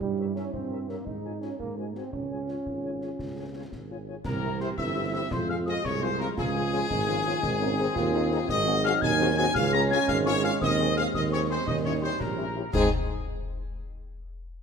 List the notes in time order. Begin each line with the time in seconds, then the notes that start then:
0.00 G2 G3 E4, concert bass drum
0.18 G4 A#4 C#5 E5
0.35 C#4 G4 A#4 C#5 E5, snare
0.53 G2 C4, concert bass drum
0.71 G4 A#4 C#5 E5
0.88 A#3 G4 A#4 C#5 E5, snare
1.06 G#2 D#4, concert bass drum
1.25 F4 G#4 C#5 G#5
1.41 C#4 F4 G#4 C#5 G#5, snare
1.59 G#2 A#3, concert bass drum
1.76 G#3 F#4 G#4 C5 G#5
1.95 C4 F#4 G#4 C5 G#5, snare
2.13 C#2 C#4 F4, concert bass drum
2.31 F4 G#4 C#5 G#5
2.48 F4 G#4 C#5 G#5, snare
2.66 G#1, concert bass drum
2.84 F4 G#4 C#5 G#5
3.01 F4 G#4 C#5 G#5, snare
3.19 C#2, concert bass drum, snare
3.37 F4 G#4 C#5 G#5
3.55 F4 G#4 C#5 G#5
3.72 G#1, concert bass drum, snare
3.90 F4 G#4 C#5 G#5
4.08 F4 G#4 C#5 G#5
4.24 C2 E3 C4 G4 A#4 A#5, concert bass drum, snare, crash
4.43 C4 E4 G4
4.60 C4 E4 G4 C5 C6, snare
4.77 G1 E4 E5 E6, concert bass drum, snare
4.95 C4 E4 G4
5.13 C4 E4 G4 E5 E6
5.31 F2 F3 G#3 F4 C5 C6, concert bass drum, snare
5.49 C4 F4 G#4 F5 F6
5.66 C4 F4 G#4 D#5 D#6, snare
5.83 C2 G#4 C#5 C#6, concert bass drum, snare
6.01 C4 F4 G#4 C5 C6
6.19 C4 F4 G#4 A#4 A#5, snare
6.36 C#2 F4 G#4 G#5, concert bass drum, snare, crash
6.55 C#4 F4 G#4
6.72 C#4 F4 G#4, snare
6.90 G#1 D#4, concert bass drum, snare
7.08 C#4 F4 G#4
7.25 C#4 F4 G#4
7.42 G#1 D#3 C4 D#4, concert bass drum, snare
7.60 C4 C#4 D#4 G#4
7.78 C4 D#4 G#4, snare
7.95 D#2 F4, concert bass drum, snare
8.14 C4 D#4 G#4
8.31 C4 D#4 G#4, snare
8.48 G#1 F#3 D#4 D#5 D#6, concert bass drum, snare, crash
8.66 C4 F#4 G#4
8.84 C4 F#4 G#4 F5 F6, snare
9.02 D#2 G#5 G#6, concert bass drum, snare
9.20 C4 F#4 G#4
9.37 C4 F#4 G#4 G#5 G#6
9.54 C#2 G#3 C#4 F5 F6, concert bass drum, snare
9.72 C#4 F4 G#4 A#5 A#6
9.90 C#4 F4 G#4 G#5 G#6, snare
10.08 G#1 F5 F6, concert bass drum, snare
10.25 C#4 F4 G#4 C#5 C#6
10.44 C#4 F4 G#4 F5 F6, snare
10.61 D#2 C4 D#5 D#6, concert bass drum, snare, crash
10.79 C4 G#4
10.96 C4 G#4 F5 F6, snare
11.13 D#2 C4 D#5 D#6, concert bass drum, snare
11.32 C4 G#4 C#5 C#6
11.49 C4 G#4 C5 C6
11.67 D#2 G3 C#4 D#4 D#5 D#6, concert bass drum, snare
11.85 C#4 E4 G4 C#5 C#6
12.02 C#4 E4 G4 C5 C6
12.20 A#1 G4 A#4 A#5, concert bass drum, snare
12.37 C#4 E4 G4
12.56 C#4 E4 G4
12.73 G#2 G#3 C4 D#4 G#4 G#5, concert bass drum, snare, crash